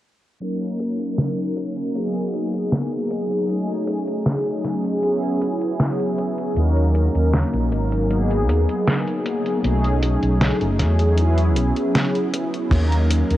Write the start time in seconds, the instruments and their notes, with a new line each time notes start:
0.40 analog polysynth F#3 A#3 C#4 D#4 A#4, closed hi-hat
0.61 closed hi-hat
0.80 closed hi-hat
1.00 closed hi-hat
1.18 snare, closed hi-hat
1.38 closed hi-hat
1.57 closed hi-hat
1.77 closed hi-hat
1.93 analog polysynth F#3 A#3 B3 D#4 G#4, closed hi-hat
2.15 closed hi-hat
2.34 closed hi-hat
2.54 closed hi-hat
2.72 snare, closed hi-hat
2.92 closed hi-hat
3.10 closed hi-hat
3.31 closed hi-hat
3.47 analog polysynth F#3 A3 C#4 D#4 G#4, closed hi-hat
3.69 closed hi-hat
3.87 closed hi-hat
4.08 closed hi-hat
4.26 snare, closed hi-hat
4.46 closed hi-hat
4.64 snare, closed hi-hat
4.85 closed hi-hat
5.01 analog polysynth F#3 B3 C#4 E4 G#4, closed hi-hat
5.23 closed hi-hat
5.42 closed hi-hat
5.61 closed hi-hat
5.80 snare, closed hi-hat
6.00 closed hi-hat
6.18 closed hi-hat
6.38 closed hi-hat
6.55 fingered electric bass D#2, analog polysynth F#3 A#3 C#4 D#4 A#4, closed hi-hat
6.77 closed hi-hat
6.95 closed hi-hat
7.15 fingered electric bass D#2, closed hi-hat
7.34 snare, closed hi-hat
7.54 fingered electric bass A#1, closed hi-hat
7.72 fingered electric bass G#1, closed hi-hat
7.92 closed hi-hat
8.09 analog polysynth F#3 A#3 B3 D#4 G#4, closed hi-hat
8.31 closed hi-hat
8.49 fingered electric bass D#2, closed hi-hat
8.69 closed hi-hat
8.87 snare, closed hi-hat
9.07 closed hi-hat
9.26 closed hi-hat
9.46 closed hi-hat
9.63 fingered electric bass B1, analog polysynth F#3 A3 C#4 D#4 G#4, closed hi-hat
9.84 closed hi-hat
10.03 closed hi-hat
10.23 fingered electric bass B1, closed hi-hat
10.41 snare, closed hi-hat
10.61 fingered electric bass F#1, closed hi-hat
10.80 fingered electric bass E2, snare, closed hi-hat
10.99 closed hi-hat
11.17 analog polysynth F#3 B3 C#4 E4 G#4, closed hi-hat
11.38 closed hi-hat
11.57 fingered electric bass B1, closed hi-hat
11.77 closed hi-hat
11.95 snare, closed hi-hat
12.15 closed hi-hat
12.34 closed hi-hat
12.54 closed hi-hat
12.70 fingered electric bass D#2, analog polysynth F#3 A#3 C#4 D#4 A#4, kick, closed hi-hat, crash
12.92 closed hi-hat
13.11 closed hi-hat
13.31 fingered electric bass D#2, closed hi-hat